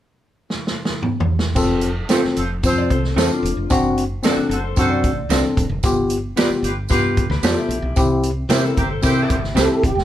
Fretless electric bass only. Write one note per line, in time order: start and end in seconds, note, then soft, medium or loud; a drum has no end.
1.56 2.03 F1 medium
2.24 muted fretless electric bass stroke soft
2.37 2.60 F1 medium
2.63 2.87 F2 medium
2.91 3.14 C2 medium
3.16 3.28 E2 medium
3.43 3.55 E1 medium
3.57 3.69 F1 medium
3.71 4.17 F#1 medium
4.37 muted fretless electric bass stroke soft
4.49 4.73 F#1 medium
4.77 5.05 F#2 medium
5.04 5.27 A1 medium
5.29 5.41 C2 medium
5.57 5.69 F1 medium
5.69 5.81 F#1 medium
5.83 6.30 G1 loud
6.50 muted fretless electric bass stroke soft
6.63 6.86 G1 medium
6.91 7.25 G2 medium
7.30 7.42 D2 medium
7.43 7.55 F2 medium
7.69 7.81 A#1 medium
7.82 7.94 B1 medium
7.96 8.43 C2 loud
8.49 8.73 C3 medium
8.77 9.00 G1 medium
9.03 9.26 C3 medium
9.30 9.53 G1 medium
9.55 9.67 C2 medium
9.83 9.95 D#1 medium
9.95 10.04 E1 medium